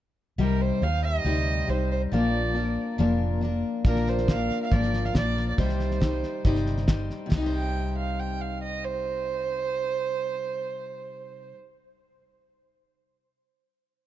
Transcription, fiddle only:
0.41 0.63 A#4 medium
0.61 0.85 C5 medium
0.83 1.04 F5 loud
1.04 1.71 D#5 loud
1.70 1.91 C5 medium
1.92 2.01 C5 medium
2.13 2.95 D5 medium
3.87 4.11 A#4 medium
4.09 4.32 C5 medium
4.31 4.62 F5 loud
4.63 4.74 F5 medium
4.72 5.07 D5 medium
5.05 5.16 F5 medium
5.17 5.47 D5 medium
5.49 5.58 D5 medium
5.61 6.86 C5 medium
7.55 7.97 G5 medium
7.98 8.21 F5 medium
8.20 8.42 G5 medium
8.41 8.62 F5 medium
8.63 8.86 D#5 medium
8.85 11.56 C5 loud

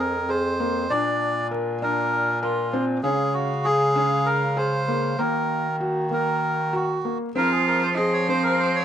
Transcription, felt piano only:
0.00 0.14 C4 medium
0.29 0.52 G#4 medium
0.60 0.83 A#3 medium
0.90 1.36 D4 medium
1.51 1.74 A#4 medium
1.82 2.28 D4 medium
2.43 2.65 A#4 medium
2.73 2.96 C4 medium
3.04 3.49 C#4 loud
3.65 3.88 G#4 medium
3.96 4.42 C#4 medium
4.57 4.80 G#4 medium
4.88 5.11 A#3 medium
5.19 5.65 A#3 medium
5.80 6.04 F#4 medium
6.11 6.58 A#3 medium
6.73 6.96 F#4 medium
7.05 7.28 A#3 medium
7.36 7.82 C4 medium
7.98 8.21 G#4 medium
8.29 8.75 C4 medium

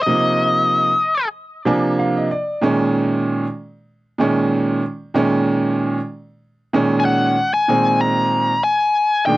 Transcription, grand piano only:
0.06 0.89 C3 medium
0.06 0.90 F3 medium
0.06 0.90 A#3 medium
0.06 0.90 D#4 medium
1.65 2.27 C3 medium
1.65 2.27 F3 medium
1.65 2.27 A#3 medium
1.65 2.27 D4 medium
1.65 1.96 G#5 medium
1.99 2.15 F5 medium
2.17 2.29 D#5 medium
2.31 2.60 D5 medium
2.61 3.44 A#2 medium
2.61 3.44 D#3 medium
2.61 3.44 G#3 medium
2.61 3.44 C#4 medium
4.18 4.80 A#2 medium
4.18 4.81 D#3 medium
4.18 4.81 G#3 medium
4.18 4.81 C#4 medium
5.14 5.97 A#2 medium
5.14 5.97 D#3 medium
5.14 5.97 G#3 medium
5.14 5.97 C#4 medium
6.73 7.34 A#2 medium
6.73 7.34 D#3 medium
6.73 7.34 G#3 medium
6.73 7.35 C#4 medium
7.68 8.50 A#2 medium
7.68 8.51 D#3 medium
7.68 8.51 G#3 medium
7.68 8.51 C4 medium
9.27 9.37 A#2 medium
9.27 9.37 D#3 medium
9.27 9.37 G#3 medium
9.27 9.37 D4 medium

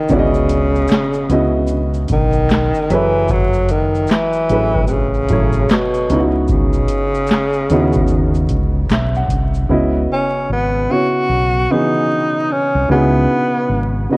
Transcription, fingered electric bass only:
0.09 0.85 C#2 loud
1.29 2.05 C#2 loud
2.10 2.71 B1 medium
2.90 4.06 F#1 loud
4.50 5.26 A1 medium
5.30 5.66 A1 medium
6.10 6.85 C#2 medium
7.70 8.06 D#2 medium
8.10 8.46 D#2 loud
8.50 8.86 C#2 medium
8.89 9.26 B1 medium
9.28 9.65 C2 medium
9.69 10.06 C#2 loud
10.49 10.86 G#1 medium
11.29 11.66 B1 medium
12.75 12.88 C2 medium
12.89 13.26 C#2 loud
13.69 14.06 G#1 medium

